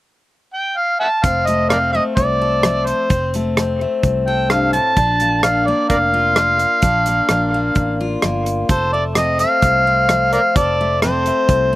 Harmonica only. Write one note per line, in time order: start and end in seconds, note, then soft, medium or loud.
0.54 0.78 G5 medium
0.77 1.00 F5 medium
1.00 1.09 E5 medium
1.00 1.06 F#5 medium
1.00 1.25 A5 medium
1.24 1.48 F5 medium
1.46 1.68 D#5 medium
1.69 1.77 A#4 soft
1.69 1.77 D5 soft
1.69 1.92 F5 medium
1.92 2.03 D#5 medium
2.16 2.88 D5 medium
2.86 3.34 C5 medium
4.27 4.49 G5 medium
4.50 4.72 F5 medium
4.73 5.39 A5 loud
5.43 5.68 F5 medium
5.67 5.89 D5 medium
5.90 5.96 A#4 medium
5.90 5.98 D5 medium
5.90 8.19 F5 medium
8.70 8.92 C5 medium
8.93 9.03 D5 medium
9.16 9.38 D#5 medium
9.40 10.29 F5 medium
10.33 10.41 A#4 medium
10.33 10.39 D5 medium
10.33 10.57 F5 medium
10.56 11.02 D5 medium
11.02 11.76 C5 medium